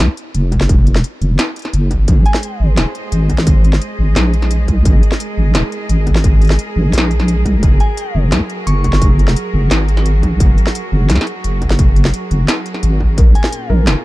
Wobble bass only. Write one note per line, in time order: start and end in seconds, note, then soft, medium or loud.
0.00 0.08 C2 loud
0.35 1.03 F1 medium
1.21 1.37 F1 medium
1.73 2.07 F#1 loud
2.08 2.24 G#1 loud
2.60 2.79 G#1 medium
2.78 2.86 D#1 loud
3.12 3.80 G#1 medium
3.99 4.15 G#1 medium
4.16 4.68 A#1 loud
4.68 4.84 C2 loud
4.86 5.02 G#1 medium
5.38 5.56 G#1 medium
5.55 5.63 D#1 loud
5.89 6.58 G#1 medium
6.76 6.92 G#1 loud
6.94 7.45 A#1 loud
7.45 7.62 C2 loud
7.63 7.79 F#1 loud
8.15 8.34 F#1 loud
8.32 8.40 C#2 loud
8.67 9.35 F#1 medium
9.53 9.70 F#1 medium
9.71 10.22 G#1 loud
10.23 10.39 A#1 loud
10.40 10.56 F#1 loud
10.92 11.11 F#1 loud
11.10 11.18 C#2 loud
11.45 12.13 F#1 medium
12.31 12.47 F#1 loud
12.83 13.17 G#1 loud
13.18 13.34 A#1 loud
13.70 13.89 A#1 medium
13.87 13.95 F1 loud